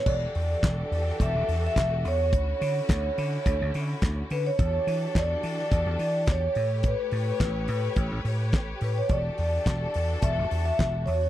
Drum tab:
CC |x---------------|----------------|----------------|----------------|
HH |--o-x-o-x-o-x-o-|x-o-x-o-x-o-x-o-|x-o-x-o-x-o-x-o-|x-o-x-o-x-o-x-o-|
CP |----x-------x---|----x-------x---|----x-------x---|----x-------x---|
SD |----o--o----o---|----o-------o---|----o--o----o---|----o-------o---|
BD |o---o---o---o---|o---o---o---o---|o---o---o---o---|o---o---o---o---|

CC |----------------|
HH |x-o-x-o-x-o-x-o-|
CP |----x-------x---|
SD |----o-------o---|
BD |o---o---o---o---|